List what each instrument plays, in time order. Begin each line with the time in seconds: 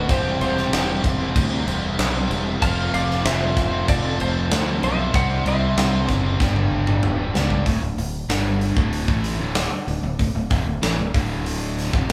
Already playing: electric slide guitar B4
0.09 fingered electric bass E1, overdriven electric guitar C3 G3 C4 E4 G4 C5, lead electric guitar G4, electric slide guitar C5, kick, crash
0.40 fingered electric bass E1, overdriven electric guitar C4 E4 G4 C5, lead electric guitar G4, electric slide guitar C5, crash
0.58 snare
0.72 fingered electric bass E1, overdriven electric guitar C3 G3 C4 E4 G4 C5, snare, crash
1.02 fingered electric bass E1, overdriven electric guitar C3 G3 C4 E4 G4 C5, muted overdriven electric guitar stroke, kick, crash
1.18 overdriven electric guitar C4 E4 G4 C5
1.36 fingered electric bass D2, kick, crash
1.50 overdriven electric guitar C4 E4 G4 C5
1.65 fingered electric bass E1, overdriven electric guitar C4 E4 G4 C5, crash
1.98 fingered electric bass B1, overdriven electric guitar C3 G3 C4 E4 G4 C5, snare, crash
2.13 overdriven electric guitar C4 E4 G4 C5
2.28 fingered electric bass E1, overdriven electric guitar C4 E4 G4 C5, crash
2.45 overdriven electric guitar C4 E4 G4 C5
2.61 fingered electric bass F1, overdriven electric guitar F2 C3 F3 A3 C4 F4, lead electric guitar F5, electric slide guitar A5, kick, crash
2.92 fingered electric bass F1, overdriven electric guitar F3 A3 C4 F4, lead electric guitar D5, electric slide guitar F5, crash
3.11 snare
3.24 fingered electric bass F1, overdriven electric guitar F2 C3 F3 A3 C4 F4, lead electric guitar C5, electric slide guitar E5, snare, crash
3.55 fingered electric bass F1, overdriven electric guitar F2 C3 F3 A3 C4 F4, muted overdriven electric guitar stroke, kick, snare, crash
3.71 overdriven electric guitar F3 A3 C4 F4
3.88 fingered electric bass F1, lead electric guitar A4, electric slide guitar D5, kick, crash
4.02 overdriven electric guitar F3 A3 C4 F4
4.19 fingered electric bass F1, overdriven electric guitar F3 A3 C4 F4, lead electric guitar A4, electric slide guitar C5, crash
4.50 fingered electric bass D2, overdriven electric guitar F2 C3 F3 A3 C4 F4, snare, crash
4.67 overdriven electric guitar F3 A3 C4 F4
4.83 fingered electric bass B1, overdriven electric guitar F3 A3 C4 F4, lead electric guitar C5, electric slide guitar E5, crash
4.99 overdriven electric guitar F3 A3 C4 F4
5.14 fingered electric bass C2, overdriven electric guitar C3 G3 C4 E4 G4 C5, lead electric guitar C5, electric slide guitar F#5, kick, crash
5.45 fingered electric bass C2, overdriven electric guitar C4 E4 G4 C5, lead electric guitar C5, electric slide guitar E5, crash
5.76 fingered electric bass C2, overdriven electric guitar C3 G3 C4 E4 G4 C5, snare, crash
6.07 fingered electric bass F#1, overdriven electric guitar C3 G3 C4 E4 G4 C5, muted overdriven electric guitar stroke, kick, snare, crash
6.24 overdriven electric guitar C4 E4 G4 C5
6.39 fingered electric bass G1, overdriven electric guitar G2 D3 G3 B3 D4 G4, kick, snare
6.55 overdriven electric guitar G3 B3 D4 G4, high tom
6.71 fingered electric bass G1, overdriven electric guitar G3 B3 D4 G4
6.87 mid tom
7.03 fingered electric bass D1, overdriven electric guitar G2 D3 G3 B3 D4 G4, mid tom
7.18 overdriven electric guitar G3 B3 D4 G4
7.34 fingered electric bass C#2, overdriven electric guitar G2 D3 G3 B3 D4 G4, snare
7.50 overdriven electric guitar G3 B3 D4 G4, kick
7.66 fingered electric bass D1, overdriven electric guitar D2 A2, kick, open hi-hat
7.82 fingered electric bass D1, overdriven electric guitar D2 A2
7.97 fingered electric bass D1, overdriven electric guitar D2 A2, open hi-hat
8.29 fingered electric bass G1, overdriven electric guitar G2 D3 G3, snare, open hi-hat
8.61 open hi-hat
8.76 fingered electric bass D1, overdriven electric guitar D2 A2 D3, kick
8.93 open hi-hat
9.08 fingered electric bass A1, overdriven electric guitar A2 E3 A3, kick
9.24 snare, open hi-hat
9.39 fingered electric bass D1, overdriven electric guitar D2 A2 D3
9.55 snare, open hi-hat
9.72 muted overdriven electric guitar stroke, muted fingered electric bass stroke
9.88 fingered electric bass D1, overdriven electric guitar D2 A2, open hi-hat
10.03 fingered electric bass D1, overdriven electric guitar D2 A2
10.19 fingered electric bass D1, overdriven electric guitar D2 A2, kick, open hi-hat
10.35 fingered electric bass D1, overdriven electric guitar D2 A2
10.51 fingered electric bass F1, overdriven electric guitar F2 C3, kick, open hi-hat
10.66 fingered electric bass D1, overdriven electric guitar D2 A2
10.82 fingered electric bass A1, overdriven electric guitar A2 E3, snare, open hi-hat
10.97 fingered electric bass D1, overdriven electric guitar D2 A2
11.14 fingered electric bass D1, overdriven electric guitar D2 A2 D3, kick, open hi-hat
11.46 open hi-hat
11.79 snare, open hi-hat
11.93 fingered electric bass F1, overdriven electric guitar F2 C3, kick
12.09 fingered electric bass G1, overdriven electric guitar G2